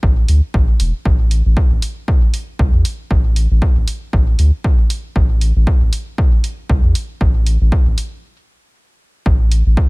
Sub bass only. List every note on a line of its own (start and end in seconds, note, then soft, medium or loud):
0.03 0.25 A1 medium
0.29 0.41 D2 medium
0.54 0.66 A1 medium
0.80 0.92 E1 loud
1.05 1.42 A1 loud
1.45 1.55 A1 medium
1.71 1.81 A1 medium
2.59 2.71 C2 loud
2.74 2.83 E2 medium
3.11 3.47 A1 loud
3.51 3.60 A1 medium
3.76 3.86 A1 medium
4.13 4.35 A1 medium
4.39 4.51 D2 medium
5.16 5.52 A1 loud
5.56 5.65 A1 medium
5.81 5.91 A1 medium
6.70 6.82 C2 loud
6.84 6.93 E2 medium
7.21 7.57 A1 loud
7.61 7.70 A1 medium
7.86 7.96 A1 medium
9.26 9.62 A1 loud
9.66 9.76 A1 medium